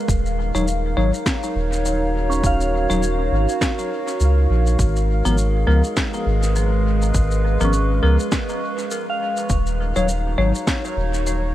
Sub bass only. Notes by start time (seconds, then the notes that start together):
0.08 D#1
0.55 D#1
0.97 G#1
1.55 D#1
2.44 D#1
2.90 D#1
3.32 G#1
4.20 C#2
4.50 A#1
4.79 G#1
5.26 G#1
5.67 C#2
6.26 G#1
7.14 G#1
7.61 G#1
8.03 C#2
9.50 D#1
9.96 D#1
10.38 G#1
10.97 D#1